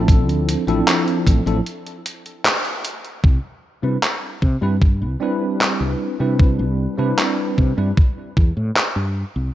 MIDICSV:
0, 0, Header, 1, 4, 480
1, 0, Start_track
1, 0, Key_signature, 0, "major"
1, 0, Tempo, 789474
1, 49, Time_signature, 4, 2, 24, 8
1, 5801, End_track
2, 0, Start_track
2, 0, Title_t, "Tine electric piano"
2, 0, Program_c, 0, 4
2, 0, Note_on_c, 0, 53, 79
2, 0, Note_on_c, 0, 60, 75
2, 0, Note_on_c, 0, 62, 73
2, 0, Note_on_c, 0, 64, 72
2, 0, Note_on_c, 0, 69, 88
2, 380, Note_off_c, 0, 53, 0
2, 381, Note_off_c, 0, 60, 0
2, 383, Note_off_c, 0, 62, 0
2, 383, Note_off_c, 0, 64, 0
2, 384, Note_off_c, 0, 69, 0
2, 408, Note_on_c, 0, 53, 87
2, 411, Note_on_c, 0, 60, 78
2, 413, Note_on_c, 0, 62, 77
2, 415, Note_on_c, 0, 64, 76
2, 417, Note_on_c, 0, 69, 94
2, 860, Note_off_c, 0, 53, 0
2, 862, Note_off_c, 0, 60, 0
2, 863, Note_off_c, 0, 62, 0
2, 864, Note_off_c, 0, 64, 0
2, 865, Note_off_c, 0, 69, 0
2, 886, Note_on_c, 0, 53, 73
2, 889, Note_on_c, 0, 60, 67
2, 890, Note_on_c, 0, 62, 67
2, 894, Note_on_c, 0, 64, 67
2, 896, Note_on_c, 0, 69, 81
2, 966, Note_off_c, 0, 53, 0
2, 967, Note_off_c, 0, 60, 0
2, 967, Note_off_c, 0, 62, 0
2, 969, Note_off_c, 0, 64, 0
2, 970, Note_off_c, 0, 69, 0
2, 2325, Note_on_c, 0, 55, 63
2, 2327, Note_on_c, 0, 60, 58
2, 2330, Note_on_c, 0, 62, 57
2, 2331, Note_on_c, 0, 64, 56
2, 2335, Note_on_c, 0, 71, 66
2, 2405, Note_off_c, 0, 55, 0
2, 2406, Note_off_c, 0, 60, 0
2, 2407, Note_off_c, 0, 62, 0
2, 2408, Note_off_c, 0, 64, 0
2, 2410, Note_off_c, 0, 71, 0
2, 2805, Note_on_c, 0, 55, 79
2, 2808, Note_on_c, 0, 60, 71
2, 2811, Note_on_c, 0, 62, 70
2, 2812, Note_on_c, 0, 64, 71
2, 2814, Note_on_c, 0, 71, 89
2, 2885, Note_off_c, 0, 55, 0
2, 2887, Note_off_c, 0, 60, 0
2, 2888, Note_off_c, 0, 62, 0
2, 2888, Note_off_c, 0, 64, 0
2, 2890, Note_off_c, 0, 71, 0
2, 3160, Note_on_c, 0, 55, 83
2, 3164, Note_on_c, 0, 60, 75
2, 3169, Note_on_c, 0, 62, 78
2, 3173, Note_on_c, 0, 64, 77
2, 3178, Note_on_c, 0, 71, 92
2, 3736, Note_off_c, 0, 55, 0
2, 3739, Note_off_c, 0, 60, 0
2, 3741, Note_off_c, 0, 62, 0
2, 3743, Note_off_c, 0, 64, 0
2, 3746, Note_off_c, 0, 71, 0
2, 3766, Note_on_c, 0, 55, 74
2, 3768, Note_on_c, 0, 60, 68
2, 3770, Note_on_c, 0, 62, 68
2, 3772, Note_on_c, 0, 64, 68
2, 3775, Note_on_c, 0, 71, 77
2, 4219, Note_off_c, 0, 55, 0
2, 4220, Note_off_c, 0, 60, 0
2, 4221, Note_off_c, 0, 62, 0
2, 4222, Note_off_c, 0, 64, 0
2, 4223, Note_off_c, 0, 71, 0
2, 4241, Note_on_c, 0, 55, 75
2, 4245, Note_on_c, 0, 60, 67
2, 4247, Note_on_c, 0, 62, 72
2, 4249, Note_on_c, 0, 64, 72
2, 4251, Note_on_c, 0, 71, 83
2, 4697, Note_off_c, 0, 55, 0
2, 4699, Note_off_c, 0, 60, 0
2, 4700, Note_off_c, 0, 62, 0
2, 4701, Note_off_c, 0, 64, 0
2, 4702, Note_off_c, 0, 71, 0
2, 4722, Note_on_c, 0, 55, 67
2, 4724, Note_on_c, 0, 60, 60
2, 4726, Note_on_c, 0, 62, 62
2, 4729, Note_on_c, 0, 64, 63
2, 4730, Note_on_c, 0, 71, 76
2, 4804, Note_off_c, 0, 55, 0
2, 4804, Note_off_c, 0, 60, 0
2, 4805, Note_off_c, 0, 62, 0
2, 4807, Note_off_c, 0, 64, 0
2, 4808, Note_off_c, 0, 71, 0
2, 5801, End_track
3, 0, Start_track
3, 0, Title_t, "Fretless electric bass"
3, 0, Program_c, 1, 35
3, 0, Note_on_c, 1, 33, 80
3, 169, Note_off_c, 1, 33, 0
3, 169, Note_on_c, 1, 38, 87
3, 332, Note_off_c, 1, 38, 0
3, 408, Note_on_c, 1, 33, 84
3, 490, Note_off_c, 1, 33, 0
3, 770, Note_on_c, 1, 33, 96
3, 852, Note_off_c, 1, 33, 0
3, 888, Note_on_c, 1, 33, 96
3, 970, Note_off_c, 1, 33, 0
3, 1969, Note_on_c, 1, 36, 82
3, 2051, Note_off_c, 1, 36, 0
3, 2329, Note_on_c, 1, 48, 72
3, 2410, Note_off_c, 1, 48, 0
3, 2689, Note_on_c, 1, 48, 87
3, 2771, Note_off_c, 1, 48, 0
3, 2807, Note_on_c, 1, 43, 87
3, 3050, Note_on_c, 1, 36, 69
3, 3059, Note_off_c, 1, 43, 0
3, 3131, Note_off_c, 1, 36, 0
3, 3529, Note_on_c, 1, 36, 78
3, 3610, Note_off_c, 1, 36, 0
3, 3769, Note_on_c, 1, 48, 70
3, 4008, Note_on_c, 1, 36, 82
3, 4017, Note_off_c, 1, 48, 0
3, 4171, Note_off_c, 1, 36, 0
3, 4246, Note_on_c, 1, 48, 71
3, 4329, Note_off_c, 1, 48, 0
3, 4610, Note_on_c, 1, 48, 86
3, 4692, Note_off_c, 1, 48, 0
3, 4728, Note_on_c, 1, 43, 90
3, 4810, Note_off_c, 1, 43, 0
3, 5088, Note_on_c, 1, 40, 86
3, 5171, Note_off_c, 1, 40, 0
3, 5208, Note_on_c, 1, 45, 78
3, 5290, Note_off_c, 1, 45, 0
3, 5447, Note_on_c, 1, 43, 68
3, 5611, Note_off_c, 1, 43, 0
3, 5689, Note_on_c, 1, 36, 77
3, 5771, Note_off_c, 1, 36, 0
3, 5801, End_track
4, 0, Start_track
4, 0, Title_t, "Drums"
4, 50, Note_on_c, 9, 36, 104
4, 56, Note_on_c, 9, 42, 68
4, 111, Note_off_c, 9, 36, 0
4, 117, Note_off_c, 9, 42, 0
4, 178, Note_on_c, 9, 42, 38
4, 239, Note_off_c, 9, 42, 0
4, 296, Note_on_c, 9, 42, 95
4, 357, Note_off_c, 9, 42, 0
4, 416, Note_on_c, 9, 42, 38
4, 476, Note_off_c, 9, 42, 0
4, 534, Note_on_c, 9, 39, 112
4, 534, Note_on_c, 9, 42, 64
4, 595, Note_off_c, 9, 39, 0
4, 595, Note_off_c, 9, 42, 0
4, 655, Note_on_c, 9, 42, 38
4, 716, Note_off_c, 9, 42, 0
4, 770, Note_on_c, 9, 36, 60
4, 773, Note_on_c, 9, 42, 97
4, 831, Note_off_c, 9, 36, 0
4, 834, Note_off_c, 9, 42, 0
4, 895, Note_on_c, 9, 42, 40
4, 955, Note_off_c, 9, 42, 0
4, 1012, Note_on_c, 9, 42, 63
4, 1073, Note_off_c, 9, 42, 0
4, 1134, Note_on_c, 9, 42, 40
4, 1195, Note_off_c, 9, 42, 0
4, 1251, Note_on_c, 9, 42, 92
4, 1312, Note_off_c, 9, 42, 0
4, 1373, Note_on_c, 9, 42, 38
4, 1434, Note_off_c, 9, 42, 0
4, 1492, Note_on_c, 9, 39, 112
4, 1492, Note_on_c, 9, 42, 63
4, 1553, Note_off_c, 9, 39, 0
4, 1553, Note_off_c, 9, 42, 0
4, 1612, Note_on_c, 9, 42, 39
4, 1672, Note_off_c, 9, 42, 0
4, 1730, Note_on_c, 9, 42, 93
4, 1791, Note_off_c, 9, 42, 0
4, 1852, Note_on_c, 9, 42, 40
4, 1913, Note_off_c, 9, 42, 0
4, 1969, Note_on_c, 9, 36, 102
4, 2029, Note_off_c, 9, 36, 0
4, 2451, Note_on_c, 9, 39, 101
4, 2512, Note_off_c, 9, 39, 0
4, 2688, Note_on_c, 9, 36, 57
4, 2749, Note_off_c, 9, 36, 0
4, 2928, Note_on_c, 9, 36, 101
4, 2989, Note_off_c, 9, 36, 0
4, 3412, Note_on_c, 9, 39, 102
4, 3473, Note_off_c, 9, 39, 0
4, 3888, Note_on_c, 9, 36, 108
4, 3949, Note_off_c, 9, 36, 0
4, 4369, Note_on_c, 9, 39, 104
4, 4430, Note_off_c, 9, 39, 0
4, 4609, Note_on_c, 9, 36, 58
4, 4669, Note_off_c, 9, 36, 0
4, 4848, Note_on_c, 9, 36, 109
4, 4909, Note_off_c, 9, 36, 0
4, 5088, Note_on_c, 9, 36, 97
4, 5149, Note_off_c, 9, 36, 0
4, 5329, Note_on_c, 9, 39, 110
4, 5390, Note_off_c, 9, 39, 0
4, 5801, End_track
0, 0, End_of_file